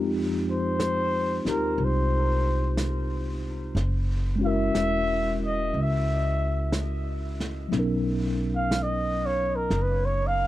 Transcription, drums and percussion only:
0.80 brush sweep soft
0.80 snare soft
0.80 hi-hat pedal medium
1.46 snare soft
1.79 brush sweep soft
2.77 brush sweep soft
2.77 snare soft
2.77 hi-hat pedal medium
3.77 brush sweep soft
3.77 snare soft
4.75 brush sweep soft
4.75 snare soft
4.75 hi-hat pedal medium
5.74 brush sweep soft
6.72 brush sweep soft
6.72 snare soft
6.72 hi-hat pedal soft
7.40 snare soft
7.73 brush sweep soft
7.73 snare soft
8.71 brush sweep soft
8.71 snare soft
8.71 hi-hat pedal medium
9.71 brush sweep soft
9.71 snare soft

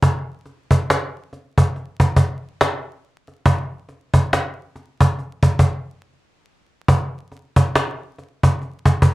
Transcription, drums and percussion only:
0.03 cajon bass loud
0.46 cajon slap soft
0.71 cajon bass medium
0.90 cajon slap loud
1.33 cajon slap soft
1.58 cajon bass medium
1.76 cajon slap soft
2.00 cajon bass medium
2.00 cajon slap soft
2.16 cajon bass medium
2.61 cajon slap loud
3.28 cajon slap soft
3.46 cajon bass loud
3.89 cajon slap soft
4.14 cajon bass medium
4.33 cajon slap loud
4.76 cajon slap soft
5.00 cajon bass medium
5.19 cajon slap soft
5.43 cajon bass medium
5.43 cajon slap soft
5.59 cajon bass medium
6.88 cajon bass loud
7.32 cajon slap soft
7.56 cajon bass medium
7.75 cajon slap loud
8.18 cajon slap soft
8.43 cajon bass medium
8.62 cajon slap soft
8.85 cajon bass medium
8.85 cajon slap soft
9.02 cajon bass medium

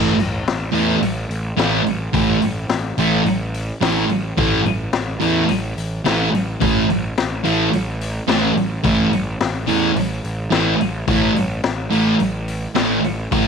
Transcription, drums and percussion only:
0.20 open hi-hat medium
0.48 snare loud
0.48 open hi-hat medium
0.75 open hi-hat medium
1.02 open hi-hat medium
1.31 open hi-hat medium
1.59 snare loud
1.59 open hi-hat medium
1.86 open hi-hat medium
2.14 kick loud
2.14 open hi-hat medium
2.42 open hi-hat medium
2.69 snare loud
2.69 open hi-hat medium
2.98 open hi-hat medium
3.26 open hi-hat medium
3.54 open hi-hat medium
3.82 snare loud
3.82 open hi-hat medium
4.10 open hi-hat medium
4.38 kick loud
4.38 open hi-hat medium
4.66 open hi-hat medium
4.93 snare loud
4.93 open hi-hat medium
5.21 open hi-hat medium
5.49 open hi-hat medium
5.78 open hi-hat medium
6.06 snare loud
6.06 open hi-hat medium
6.34 open hi-hat medium
6.61 kick loud
6.61 open hi-hat medium
6.90 open hi-hat medium
7.18 snare loud
7.18 open hi-hat medium
7.45 open hi-hat medium
7.73 open hi-hat medium
8.01 open hi-hat medium
8.29 snare loud
8.29 open hi-hat medium
8.57 open hi-hat medium
8.85 kick loud
8.85 open hi-hat medium
9.13 open hi-hat medium
9.40 snare loud
9.40 open hi-hat medium
9.68 open hi-hat medium
9.96 open hi-hat medium
10.24 open hi-hat medium
10.52 snare loud
10.52 open hi-hat medium
10.81 open hi-hat medium
11.08 kick loud
11.08 open hi-hat medium
11.36 open hi-hat medium
11.64 snare loud
11.64 open hi-hat medium
11.92 open hi-hat medium
12.20 open hi-hat medium
12.48 open hi-hat medium
12.76 snare loud
12.76 open hi-hat medium
13.04 open hi-hat medium
13.32 kick loud
13.32 open hi-hat medium

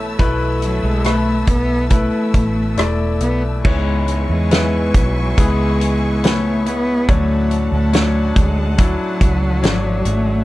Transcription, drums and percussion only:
0.19 kick medium
0.19 closed hi-hat medium
0.62 closed hi-hat medium
1.04 cross-stick medium
1.04 closed hi-hat medium
1.47 kick medium
1.47 closed hi-hat medium
1.90 kick medium
1.90 closed hi-hat medium
2.34 kick medium
2.34 closed hi-hat medium
2.77 cross-stick loud
2.77 closed hi-hat medium
3.20 closed hi-hat medium
3.65 kick loud
3.65 crash medium
4.08 closed hi-hat medium
4.51 snare loud
4.51 closed hi-hat medium
4.94 kick medium
4.94 closed hi-hat medium
5.38 kick medium
5.38 closed hi-hat medium
5.81 closed hi-hat medium
6.24 snare loud
6.24 closed hi-hat medium
6.66 closed hi-hat medium
7.09 kick loud
7.09 closed hi-hat medium
7.51 closed hi-hat medium
7.93 snare loud
7.93 closed hi-hat medium
8.36 kick medium
8.36 closed hi-hat medium
8.78 kick medium
8.78 closed hi-hat loud
9.21 kick medium
9.21 closed hi-hat medium
9.63 snare loud
9.63 closed hi-hat medium
10.05 closed hi-hat medium

